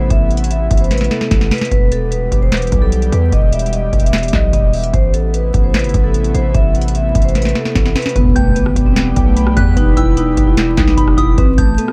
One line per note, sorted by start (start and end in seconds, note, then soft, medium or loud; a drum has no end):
0.00 1.68 C3 medium
0.00 1.68 A3 medium
0.00 4.90 B3 medium
0.00 1.68 E4 medium
0.10 0.68 A1 loud
0.10 0.29 E5 loud
0.10 kick loud
0.10 closed hi-hat medium
0.30 0.49 F#5 medium
0.30 closed hi-hat medium
0.37 closed hi-hat medium
0.44 closed hi-hat medium
0.51 0.79 E5 medium
0.51 closed hi-hat medium
0.71 1.09 A1 loud
0.71 kick loud
0.71 closed hi-hat medium
0.77 0.90 C5 medium
0.77 closed hi-hat medium
0.84 closed hi-hat soft
0.91 1.10 B4 medium
0.91 snare medium
0.91 closed hi-hat medium
0.98 snare medium
0.98 closed hi-hat medium
1.04 closed hi-hat soft
1.11 1.49 A4 medium
1.11 snare medium
1.21 snare medium
1.31 1.50 A1 loud
1.31 kick loud
1.31 snare medium
1.31 closed hi-hat medium
1.41 snare medium
1.51 1.70 B4 medium
1.51 snare loud
1.51 closed hi-hat soft
1.51 open hi-hat medium
1.58 snare medium
1.58 closed hi-hat medium
1.65 closed hi-hat medium
1.71 2.29 E1 loud
1.71 4.90 E3 medium
1.71 4.90 G3 medium
1.71 4.90 G4 medium
1.71 1.90 B4 loud
1.71 kick loud
1.71 closed hi-hat medium
1.92 2.11 A4 medium
1.92 closed hi-hat medium
2.11 2.40 B4 medium
2.11 closed hi-hat medium
2.32 2.70 E1 loud
2.32 kick medium
2.32 closed hi-hat medium
2.42 2.52 C5 medium
2.52 2.81 B4 medium
2.52 snare loud
2.52 clap loud
2.52 closed hi-hat medium
2.57 closed hi-hat medium
2.62 closed hi-hat medium
2.67 closed hi-hat medium
2.72 3.11 B1 loud
2.72 kick medium
2.72 closed hi-hat medium
2.82 3.10 A4 medium
2.92 closed hi-hat medium
3.02 closed hi-hat soft
3.12 3.32 E2 loud
3.12 3.31 B4 medium
3.12 closed hi-hat medium
3.32 3.90 E1 loud
3.32 3.52 D#5 medium
3.32 kick loud
3.32 closed hi-hat medium
3.52 3.71 E5 medium
3.52 closed hi-hat medium
3.59 closed hi-hat medium
3.66 closed hi-hat soft
3.73 4.01 D#5 medium
3.73 closed hi-hat medium
3.93 4.32 E1 loud
3.93 kick loud
3.93 closed hi-hat soft
4.00 4.31 E5 medium
4.00 closed hi-hat medium
4.06 closed hi-hat medium
4.13 snare loud
4.13 clap loud
4.13 closed hi-hat medium
4.18 closed hi-hat medium
4.23 closed hi-hat medium
4.28 closed hi-hat medium
4.33 4.52 B1 loud
4.33 4.52 D#5 medium
4.33 kick medium
4.33 snare medium
4.33 clap medium
4.53 4.92 E1 loud
4.53 4.72 D#5 medium
4.53 kick loud
4.53 closed hi-hat medium
4.73 4.92 E5 medium
4.73 closed hi-hat soft
4.73 open hi-hat medium
4.84 closed hi-hat medium
4.94 5.52 A1 loud
4.94 8.13 C3 medium
4.94 8.12 A3 medium
4.94 8.13 B3 medium
4.94 8.13 E4 medium
4.94 5.13 C5 loud
4.94 kick loud
4.94 closed hi-hat medium
5.14 5.33 A4 medium
5.14 closed hi-hat medium
5.34 5.62 B4 medium
5.34 closed hi-hat medium
5.54 5.86 A1 loud
5.54 kick loud
5.54 closed hi-hat medium
5.64 5.73 C5 medium
5.74 6.02 B4 medium
5.74 snare loud
5.74 clap medium
5.74 closed hi-hat medium
5.79 closed hi-hat medium
5.84 5.94 G1 loud
5.84 closed hi-hat medium
5.89 closed hi-hat soft
5.94 6.33 A1 loud
5.94 kick medium
5.94 closed hi-hat medium
6.04 6.32 A4 medium
6.14 closed hi-hat medium
6.24 closed hi-hat soft
6.34 6.54 A1 loud
6.34 6.53 C5 medium
6.34 closed hi-hat medium
6.54 7.13 A1 loud
6.54 6.74 E5 loud
6.54 kick loud
6.54 closed hi-hat medium
6.74 6.94 F#5 medium
6.74 closed hi-hat soft
6.81 closed hi-hat medium
6.88 closed hi-hat medium
6.95 7.23 E5 medium
6.95 closed hi-hat medium
7.15 7.54 A1 loud
7.15 kick loud
7.15 closed hi-hat medium
7.22 7.34 C5 medium
7.22 closed hi-hat medium
7.28 closed hi-hat soft
7.35 7.54 B4 medium
7.35 snare medium
7.35 closed hi-hat medium
7.42 snare medium
7.42 closed hi-hat medium
7.49 closed hi-hat soft
7.55 7.93 A4 medium
7.55 snare medium
7.65 snare medium
7.75 7.95 A1 loud
7.75 kick loud
7.75 snare medium
7.75 closed hi-hat medium
7.86 snare medium
7.96 8.15 B4 medium
7.96 snare loud
7.96 closed hi-hat soft
7.96 open hi-hat medium
8.02 snare medium
8.02 closed hi-hat medium
8.09 closed hi-hat medium
8.16 8.35 E1 loud
8.16 11.35 E3 medium
8.16 11.35 G3 medium
8.16 11.35 B3 medium
8.16 8.35 B3 loud
8.16 11.35 G4 medium
8.16 8.55 B4 medium
8.16 kick loud
8.16 closed hi-hat medium
8.16 impact medium
8.36 8.57 E1 loud
8.36 8.55 A3 medium
8.36 9.16 G5 medium
8.36 8.55 G6 medium
8.36 kick medium
8.36 closed hi-hat medium
8.55 8.75 G1 loud
8.55 8.84 B3 medium
8.55 8.95 B4 medium
8.55 closed hi-hat medium
8.66 cross-stick medium
8.76 9.15 E1 loud
8.76 kick loud
8.76 closed hi-hat medium
8.86 8.96 C4 medium
8.96 9.25 B3 medium
8.96 9.75 B4 medium
8.96 snare loud
8.96 clap loud
8.96 closed hi-hat medium
9.16 9.55 B1 loud
9.16 9.97 G5 medium
9.16 kick loud
9.16 closed hi-hat medium
9.26 9.55 A3 medium
9.36 10.37 B5 medium
9.36 closed hi-hat medium
9.47 cross-stick medium
9.57 9.76 E2 loud
9.57 9.76 B3 medium
9.57 9.76 F#6 medium
9.57 10.57 B6 medium
9.57 kick loud
9.57 closed hi-hat medium
9.76 9.96 E1 loud
9.76 9.96 D#4 medium
9.76 10.16 B4 medium
9.76 kick loud
9.76 closed hi-hat medium
9.96 10.36 E1 loud
9.96 10.16 E4 medium
9.96 10.76 G5 medium
9.96 10.16 E6 medium
9.96 kick medium
9.96 closed hi-hat medium
10.17 10.45 D#4 medium
10.17 10.55 B4 medium
10.17 closed hi-hat medium
10.37 10.76 E1 loud
10.37 kick loud
10.37 closed hi-hat medium
10.47 10.76 E4 medium
10.57 11.37 B4 medium
10.57 snare loud
10.57 clap loud
10.57 closed hi-hat medium
10.77 10.97 B1 loud
10.77 10.97 D#4 loud
10.77 11.38 G5 medium
10.77 kick loud
10.77 snare medium
10.77 clap medium
10.77 closed hi-hat medium
10.88 snare medium
10.97 11.17 E1 loud
10.97 11.17 D#4 medium
10.97 11.38 B5 loud
10.97 kick loud
10.97 closed hi-hat medium
11.08 cross-stick medium
11.17 11.37 E1 loud
11.17 11.36 E4 medium
11.17 11.37 D#6 medium
11.17 11.38 B6 medium
11.17 kick loud
11.17 closed hi-hat medium
11.38 11.57 A1 loud
11.38 11.92 B2 medium
11.38 11.92 C3 medium
11.38 11.92 A3 medium
11.38 11.57 C4 loud
11.38 11.92 E4 medium
11.38 11.92 B4 medium
11.38 kick loud
11.38 closed hi-hat medium
11.58 11.77 A1 loud
11.58 11.77 A3 medium
11.58 11.92 A5 medium
11.58 11.77 G6 medium
11.58 kick medium
11.58 closed hi-hat medium
11.78 11.92 B3 medium
11.78 11.92 A4 medium
11.78 closed hi-hat medium
11.88 cross-stick medium